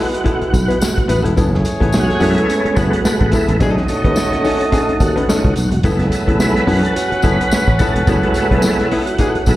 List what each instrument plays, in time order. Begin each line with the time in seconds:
Already playing: horn section G#3 E4 B4, hollow-body jazz guitar B3 E4 A4, tonewheel organ F#4
0.12 muted hollow-body jazz guitar stroke, closed hi-hat
0.24 hollow-body jazz guitar B3 E4 A4, kick, closed hi-hat
0.42 muted fretless electric bass stroke, closed hi-hat
0.53 fretless electric bass B1, muted hollow-body jazz guitar stroke, kick, closed hi-hat, tambourine
0.68 hollow-body jazz guitar B3 E4 B4, closed hi-hat
0.80 muted hollow-body jazz guitar stroke, snare, tambourine
0.97 muted hollow-body jazz guitar stroke, kick, closed hi-hat
1.08 fretless electric bass A1, hollow-body jazz guitar B3 E4 B4, closed hi-hat, tambourine
1.23 fretless electric bass E1, hollow-body jazz guitar B3 E4 A4, closed hi-hat
1.36 fretless electric bass F#1, horn section A3 G#4 C#5, hollow-body jazz guitar B3 E4 A4, kick, closed hi-hat, tambourine
1.52 muted hollow-body jazz guitar stroke, snare
1.65 muted hollow-body jazz guitar stroke, closed hi-hat, tambourine
1.80 fretless electric bass A1, hollow-body jazz guitar B3 E4 A4, kick, closed hi-hat
1.92 fretless electric bass B1, tonewheel organ F#4, snare, tambourine
2.09 muted hollow-body jazz guitar stroke, snare, closed hi-hat
2.20 fretless electric bass F#2, tonewheel organ G#3 A3 B3 E4, hollow-body jazz guitar B3 E4 A4, open hi-hat, tambourine
2.36 tonewheel organ E4, muted hollow-body jazz guitar stroke, closed hi-hat
2.49 tonewheel organ C#4, closed hi-hat, tambourine
2.65 muted fretless electric bass stroke, muted hollow-body jazz guitar stroke, closed hi-hat
2.76 fretless electric bass F#1, hollow-body jazz guitar B3 E4 A4, tonewheel organ F#4, kick, closed hi-hat, tambourine
2.93 muted hollow-body jazz guitar stroke, closed hi-hat
3.05 muted fretless electric bass stroke, snare, tambourine
3.20 fretless electric bass A1, muted hollow-body jazz guitar stroke, kick, closed hi-hat
3.31 hollow-body jazz guitar B3 E4 A4, tonewheel organ E4, kick, closed hi-hat, tambourine
3.48 fretless electric bass A1, muted hollow-body jazz guitar stroke, closed hi-hat
3.59 fretless electric bass B1, horn section A3 F#4 D#5, hollow-body jazz guitar C#4 D#4 A4, tonewheel organ D#4, kick, closed hi-hat, tambourine
3.77 muted hollow-body jazz guitar stroke, snare
3.88 tonewheel organ A3 C#4 D#4, muted hollow-body jazz guitar stroke, closed hi-hat, tambourine
4.03 fretless electric bass D#2, tonewheel organ C#4, hollow-body jazz guitar C#4 D#4 B4, kick, closed hi-hat
4.16 muted hollow-body jazz guitar stroke, snare, tambourine
4.33 muted hollow-body jazz guitar stroke, snare, closed hi-hat
4.44 hollow-body jazz guitar C#4 D#4 A4, open hi-hat, tambourine
4.59 tonewheel organ D#4, muted hollow-body jazz guitar stroke, closed hi-hat
4.72 hollow-body jazz guitar C#4 D#4 A4, kick, closed hi-hat, tambourine
4.89 muted fretless electric bass stroke, closed hi-hat
5.00 fretless electric bass D#2, tonewheel organ F#4, muted hollow-body jazz guitar stroke, kick, closed hi-hat, tambourine
5.16 hollow-body jazz guitar C#4 D#4 B4, closed hi-hat
5.29 tonewheel organ A3 C#4 D#4, hollow-body jazz guitar C#4 D#4 A4, snare, tambourine
5.44 fretless electric bass C#2, kick, closed hi-hat
5.56 fretless electric bass B1, muted hollow-body jazz guitar stroke, closed hi-hat, tambourine
5.72 fretless electric bass E1, muted hollow-body jazz guitar stroke, closed hi-hat
5.83 fretless electric bass F#1, tonewheel organ G#3 A3 B3 E4, hollow-body jazz guitar B3 E4 A4, horn section C#4 B4 F#5, kick, closed hi-hat, tambourine
5.99 muted hollow-body jazz guitar stroke, snare, closed hi-hat
6.12 muted hollow-body jazz guitar stroke, closed hi-hat, tambourine
6.27 fretless electric bass A1, hollow-body jazz guitar B3 E4 A4, kick, closed hi-hat
6.39 fretless electric bass B1, tonewheel organ B4, muted hollow-body jazz guitar stroke, snare, tambourine
6.54 muted hollow-body jazz guitar stroke, snare, closed hi-hat
6.67 fretless electric bass F#2, hollow-body jazz guitar B3 E4 A4, open hi-hat
6.82 tonewheel organ A4, muted hollow-body jazz guitar stroke, closed hi-hat
6.95 tonewheel organ F#4, closed hi-hat, tambourine
7.10 muted hollow-body jazz guitar stroke, muted fretless electric bass stroke, closed hi-hat
7.22 fretless electric bass F#1, hollow-body jazz guitar B3 E4 A4, tonewheel organ B4, kick, closed hi-hat, tambourine
7.41 muted hollow-body jazz guitar stroke, closed hi-hat
7.51 muted fretless electric bass stroke, snare, tambourine
7.68 fretless electric bass A1, muted hollow-body jazz guitar stroke, kick, closed hi-hat
7.79 hollow-body jazz guitar B3 E4 A4, tonewheel organ A4, kick, closed hi-hat, tambourine
7.96 fretless electric bass E1, muted hollow-body jazz guitar stroke, closed hi-hat
8.07 fretless electric bass F#1, tonewheel organ G#3 A3 B3 E4 F#4, hollow-body jazz guitar B3 E4 A4, kick, closed hi-hat, tambourine
8.23 muted hollow-body jazz guitar stroke, closed hi-hat
8.34 muted hollow-body jazz guitar stroke, closed hi-hat, tambourine
8.50 fretless electric bass B1, hollow-body jazz guitar B3 E4 B4, tonewheel organ E4, kick, closed hi-hat
8.62 muted hollow-body jazz guitar stroke, snare, tambourine
8.79 muted hollow-body jazz guitar stroke, snare, closed hi-hat
8.91 hollow-body jazz guitar B3 E4 A4, open hi-hat
9.06 tonewheel organ F#4, muted hollow-body jazz guitar stroke, closed hi-hat
9.18 hollow-body jazz guitar B3 E4 A4, kick, closed hi-hat, tambourine
9.35 muted fretless electric bass stroke, closed hi-hat
9.46 fretless electric bass B1, tonewheel organ G#3 A3 B3 E4 F#4, muted hollow-body jazz guitar stroke, kick, closed hi-hat, tambourine